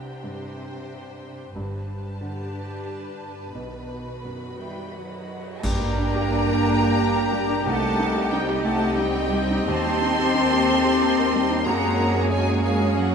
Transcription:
Already playing: C2 C3 D4 G4 C5 G5
0.24 G2
1.55 G1 G2 D4 G4 B4 A5
2.21 D3
3.55 B1 B2 D#3 F#4 B5
4.25 F#2
4.59 D#3 G3 E5 G5
4.94 F#3 D#5 F#5
5.63 G2 A#3 D4 G4 A#4 D5 G5 A#5, concert bass drum, crash
5.81 G3
5.98 D4
6.15 G4
6.32 D4
6.48 G4
6.65 A4
6.82 G4
6.98 D4
7.15 A#4
7.31 G3
7.48 D4
7.65 C2 A3 C4 D#4 G4 D#5 F#5 A5
7.82 G3
7.99 D#4
8.16 G4
8.31 G3 D#4 D#5 G5
8.49 G4
8.63 A3 A4 F#5 A5
8.82 G4
8.97 G3 D#4 D#5 G5
9.14 C5
9.32 G3
9.50 D#4
9.67 D#2 C4 G4 A5 C6
9.85 G3
10.01 D#4
10.18 G4
10.35 A#3 D#4
10.52 G4
10.69 A4
10.84 G4
11.01 D#4
11.17 A#4
11.34 G3
11.51 D#4
11.65 F#2 A#3 F#4 G#4 C#5 F#5 A#5
11.83 G#3
11.99 C#4
12.15 G#4
12.30 G#3 C#4 C#5 G#5
12.48 G#4
12.63 G#3 A#4 F5 G#5
12.80 G#4
12.96 F#3 C#4 C#5 F#5

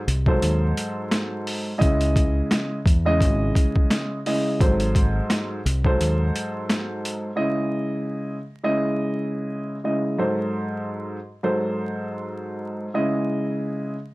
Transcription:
0.08 C2, closed hi-hat
0.26 G#2 F#3 A4 C5, kick
0.42 D#2, closed hi-hat
0.77 closed hi-hat
1.11 snare, closed hi-hat
1.47 open hi-hat
1.78 C#2 C#3 G#3 E4 D#5, kick, closed hi-hat
2.01 closed hi-hat
2.16 kick, closed hi-hat
2.51 snare, closed hi-hat
2.86 E2, kick, closed hi-hat
3.06 C#3 G#3 E4 D#5
3.21 G#1, kick, closed hi-hat
3.55 kick, closed hi-hat
3.76 kick
3.91 snare, closed hi-hat
4.26 C#3 G#3 E4 D#5, open hi-hat
4.60 G#1 G#2 F#3 A4 C5, kick, closed hi-hat
4.80 closed hi-hat
4.95 kick, closed hi-hat
5.30 snare, closed hi-hat
5.66 C2, closed hi-hat
5.84 G#2 F#3 A4 C5, kick
6.00 D#2, closed hi-hat
6.36 closed hi-hat
6.70 snare, closed hi-hat
7.05 closed hi-hat
7.36 C#3 G#3 E4 D#5
8.64 C#3 G#3 E4 D#5
9.84 C#3 G#3 E4 D#5
10.18 G#2 F#3 A4 C5
11.43 G#2 F#3 A4 C5
12.94 C#3 G#3 E4 D#5

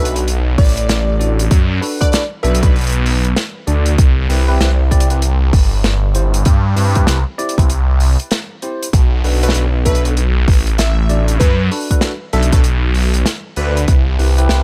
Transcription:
Already playing: B1 D4 F#4 A4 B4 E5
0.05 closed hi-hat
0.15 D4 F#4 A4 B4, closed hi-hat
0.28 closed hi-hat
0.58 A1 D5, kick, open hi-hat
0.64 open hi-hat
0.69 open hi-hat
0.77 closed hi-hat
0.89 snare, closed hi-hat
1.19 D4 F#4 A4 D5, closed hi-hat
1.39 closed hi-hat
1.51 F#2, kick, closed hi-hat
1.81 D4 F#4 A4 B4, cross-stick, open hi-hat
2.01 D4 F#4 A4 B4 D5, kick, closed hi-hat
2.12 D5, snare, closed hi-hat
2.43 B1 D4 F#4 A4 B4 E5, closed hi-hat
2.55 closed hi-hat
2.62 D4 F#4 A4 B4, kick, closed hi-hat
2.76 closed hi-hat
2.79 closed hi-hat
2.81 closed hi-hat
2.84 closed hi-hat
2.87 closed hi-hat
2.89 closed hi-hat
2.92 closed hi-hat
3.06 open hi-hat
3.25 closed hi-hat
3.36 snare, closed hi-hat
3.67 D2 D4 F#4 A4 D5, closed hi-hat
3.86 closed hi-hat
3.98 C2, kick, closed hi-hat
4.29 C2 C4 E4 G4 B4, open hi-hat
4.48 C4 E4 G4 B4
4.60 C2, snare, closed hi-hat
4.91 C4 E4 G4 D5, kick, closed hi-hat
5.00 closed hi-hat
5.10 C4 E4 G4 B4, closed hi-hat
5.22 closed hi-hat
5.53 G1, kick, open hi-hat
5.84 snare, closed hi-hat
6.15 C4 E4 G4 C5, closed hi-hat
6.34 closed hi-hat
6.45 G2, kick, closed hi-hat
6.76 G2 C4 E4 G4 B4, cross-stick, open hi-hat
6.95 C4 E4 G4 B4, kick, closed hi-hat
7.07 C2, snare, closed hi-hat
7.38 C4 E4 G4 D5, closed hi-hat
7.49 closed hi-hat
7.58 C2 C4 E4 G4 B4, kick, closed hi-hat
7.70 closed hi-hat
8.00 open hi-hat
8.20 closed hi-hat
8.31 snare, closed hi-hat
8.62 C4 E4 G4 C5, closed hi-hat
8.83 closed hi-hat
8.93 B1, kick, closed hi-hat
9.24 B1 D4 F#4 A4 B4, open hi-hat
9.43 D4 F#4 A4 B4, closed hi-hat
9.49 snare
9.54 B1, closed hi-hat
9.85 D4 F#4 A4 B4 E5, kick, closed hi-hat
9.95 closed hi-hat
10.05 D4 F#4 A4 B4, closed hi-hat
10.17 closed hi-hat
10.48 A1, kick, open hi-hat
10.67 closed hi-hat
10.78 E5, snare, closed hi-hat
11.09 D4 F#4 A4 D5, closed hi-hat
11.28 closed hi-hat
11.40 F#2 B4, kick, closed hi-hat
11.71 D4 F#4 A4 B4, cross-stick, open hi-hat
11.91 D4 F#4 A4 B4, kick, closed hi-hat
12.01 snare, closed hi-hat
12.33 B1 D4 F#4 A4 E5, closed hi-hat
12.43 closed hi-hat
12.52 D4 F#4 A4 B4, kick, closed hi-hat
12.64 closed hi-hat
12.94 open hi-hat
13.14 closed hi-hat
13.26 snare, closed hi-hat
13.56 D2 D4 F#4 A4 B4 D5, closed hi-hat
13.77 closed hi-hat
13.88 C2, kick, closed hi-hat
14.19 C2 C4 E4 G4 B4, open hi-hat
14.38 C4 E4 G4 B4, closed hi-hat
14.49 C2, snare, closed hi-hat

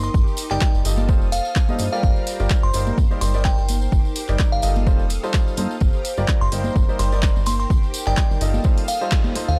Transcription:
Already playing: D#4 A#4 D#5 G5 C6
0.03 C6, tambourine
0.14 G1 D#4 G4 D6, kick, tambourine
0.27 tambourine
0.37 open hi-hat, tambourine
0.50 G1 G3 D#4 G4 A#4 D5 G5, clap, tambourine
0.61 kick, clap, tambourine
0.74 G1, tambourine
0.85 G1 G3 D#4 F4 A4 C5 D#5 F5 D#6, open hi-hat, tambourine
0.98 tambourine, high conga
1.02 F5
1.08 F1 G3 D#4 F4 A4 C5, kick, tambourine
1.22 tambourine
1.32 F5, open hi-hat, tambourine
1.45 tambourine
1.55 kick, clap, tambourine
1.69 G3 D#4 F4 A4 D#5, tambourine, high conga
1.79 G2, open hi-hat, tambourine, high conga
1.92 G3 F4 G4 A#4 D5 F5, tambourine
2.03 G1 G4 A#5, kick, tambourine
2.16 tambourine
2.27 open hi-hat, tambourine
2.36 A#5, tambourine
2.40 G1 G3 F4 G4 A#4 D5
2.50 kick, clap, tambourine
2.63 G1 C6, tambourine
2.73 G1 G3 D#4 G4 A#4 C5 C6, open hi-hat, tambourine
2.87 tambourine, high conga
2.98 G1, kick, tambourine
3.11 G3 D#4 G4 A#4 C5, tambourine
3.21 G1 G3 D#4 G4 A#4 C5 C6, open hi-hat, tambourine
3.28 G5
3.34 G3 D#4 G4 A#4 D5, tambourine
3.44 G5, kick, clap, tambourine
3.58 G1, tambourine
3.69 open hi-hat, tambourine, high conga
3.81 tambourine
3.92 G1 G4 D6, kick, tambourine
4.05 tambourine
4.16 open hi-hat, tambourine
4.28 G1 G3 D#4 G4 A#4 D5, clap, tambourine
4.39 kick, clap, tambourine
4.52 G1 F5, tambourine
4.62 G1 G3 D#4 F4 A4 C5 D#5 F5 D#6, open hi-hat, tambourine
4.76 A5, tambourine, high conga
4.87 F1 G3 D#4 F4 A4 C5, kick, tambourine
4.99 tambourine
5.10 F5, open hi-hat, tambourine
5.23 G3 D#4 F4 A4 C5, tambourine
5.33 kick, clap, tambourine
5.48 tambourine
5.57 G2 D#4 F4 A4 C5, open hi-hat, tambourine, high conga
5.71 tambourine
5.80 G1 G4 A#5, kick, tambourine
5.93 tambourine
6.05 open hi-hat, tambourine
6.10 A#5
6.17 G1 G3 F4 G4 A#4 D5, tambourine
6.28 kick, clap, tambourine
6.41 G1 C6, tambourine
6.52 G1 G3 D#4 G4 A#4 C5 C6, open hi-hat, tambourine
6.64 tambourine, high conga
6.76 G1 D#4, kick, tambourine
6.89 G3 D#4 G4 A#4 C5, tambourine
6.99 G1 G3 D#4 G4 A#4 C5 C6, open hi-hat, tambourine
7.06 G5
7.12 G3 D#4 G4 A#4 D5, tambourine
7.22 kick, clap, tambourine
7.36 G1, tambourine
7.46 C6, open hi-hat, tambourine, high conga
7.60 C6, tambourine
7.70 G1 G4 D6, kick, tambourine
7.83 tambourine
7.94 open hi-hat, tambourine
8.06 G1 G3 D#4 G4 A#4 D5 G5, clap, tambourine
8.17 kick, clap, tambourine
8.30 G1, tambourine
8.41 G1 G3 D#4 F4 A4 C5 D#5 F5 D#6, open hi-hat, tambourine
8.54 tambourine, high conga
8.64 G3 D#4 F4 A4 C5, kick, tambourine
8.77 F5, open hi-hat, tambourine
8.88 F5, open hi-hat, tambourine
9.01 G3 D#4 F4 A4 C5, tambourine
9.11 kick, clap, tambourine
9.24 tambourine, high conga
9.35 D#4 F4 A4 C5, open hi-hat, tambourine, high conga
9.48 D#2 F5, tambourine

